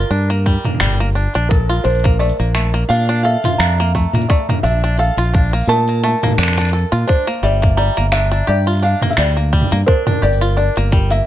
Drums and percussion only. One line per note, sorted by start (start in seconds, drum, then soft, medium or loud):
0.11 shaker soft
0.30 open hi-hat soft
0.30 shaker soft
0.46 kick medium
0.46 shaker medium
0.65 mid tom medium
0.65 open hi-hat medium
0.65 shaker soft
0.75 mid tom soft
0.80 finger snap medium
0.80 shaker medium
0.87 mid tom soft
1.00 open hi-hat soft
1.16 shaker medium
1.34 open hi-hat soft
1.34 shaker soft
1.50 kick loud
1.50 shaker soft
1.69 open hi-hat soft
1.69 shaker soft
1.73 open hi-hat soft
1.77 open hi-hat soft
1.81 open hi-hat soft
1.85 open hi-hat soft
1.85 shaker medium
1.90 open hi-hat soft
1.95 open hi-hat soft
2.00 open hi-hat soft
2.04 kick loud
2.04 open hi-hat medium
2.04 shaker soft
2.20 shaker soft
2.30 open hi-hat soft
2.40 shaker soft
2.55 finger snap medium
2.55 shaker medium
2.74 open hi-hat medium
2.74 shaker soft
2.90 shaker soft
3.09 open hi-hat soft
3.09 shaker soft
3.25 shaker medium
3.44 mid tom medium
3.44 open hi-hat medium
3.44 shaker soft
3.60 finger snap medium
3.60 shaker soft
3.95 kick medium
3.95 shaker medium
4.14 mid tom medium
4.14 shaker soft
4.22 open hi-hat medium
4.30 kick loud
4.30 shaker soft
4.49 mid tom medium
4.49 open hi-hat soft
4.49 shaker soft
4.65 shaker medium
4.84 open hi-hat medium
4.84 shaker soft
5.00 shaker soft
5.19 open hi-hat soft
5.19 shaker soft
5.35 kick loud
5.35 shaker soft
5.40 shaker soft
5.44 shaker soft
5.49 shaker soft
5.53 open hi-hat medium
5.53 shaker medium
5.58 shaker medium
5.61 shaker medium
5.65 shaker medium
5.69 shaker soft
5.88 open hi-hat soft
5.88 shaker soft
6.04 shaker medium
6.23 mid tom medium
6.23 open hi-hat medium
6.23 shaker soft
6.27 mid tom medium
6.31 mid tom soft
6.34 mid tom soft
6.38 finger snap medium
6.38 shaker soft
6.43 finger snap medium
6.48 finger snap medium
6.48 mid tom soft
6.53 finger snap soft
6.53 mid tom soft
6.58 finger snap soft
6.61 finger snap soft
6.65 finger snap soft
6.69 finger snap soft
6.73 open hi-hat soft
6.73 shaker medium
6.93 open hi-hat medium
6.93 shaker soft
7.09 kick loud
7.09 shaker soft
7.27 open hi-hat soft
7.27 shaker soft
7.43 shaker medium
7.62 kick loud
7.62 open hi-hat medium
7.62 shaker soft
7.78 shaker soft
7.97 open hi-hat medium
7.97 shaker soft
8.12 finger snap medium
8.12 shaker medium
8.32 open hi-hat medium
8.32 shaker soft
8.48 shaker soft
8.66 open hi-hat soft
8.66 shaker soft
8.69 open hi-hat soft
8.71 open hi-hat soft
8.73 open hi-hat soft
8.75 open hi-hat soft
8.77 open hi-hat soft
8.80 open hi-hat soft
8.80 shaker medium
9.02 mid tom medium
9.02 open hi-hat soft
9.02 shaker soft
9.05 open hi-hat soft
9.10 open hi-hat soft
9.13 finger snap medium
9.13 open hi-hat soft
9.17 open hi-hat soft
9.17 shaker soft
9.22 open hi-hat soft
9.27 open hi-hat medium
9.32 open hi-hat medium
9.52 kick medium
9.52 shaker medium
9.62 mid tom medium
9.71 open hi-hat medium
9.71 shaker soft
9.88 kick loud
9.88 shaker soft
10.07 mid tom medium
10.07 open hi-hat soft
10.22 shaker medium
10.32 shaker medium
10.42 open hi-hat medium
10.42 shaker soft
10.49 shaker soft
10.52 shaker soft
10.57 shaker soft
10.64 shaker soft
10.76 open hi-hat soft
10.76 shaker soft
10.91 kick loud
10.91 shaker medium
11.11 open hi-hat medium
11.11 shaker soft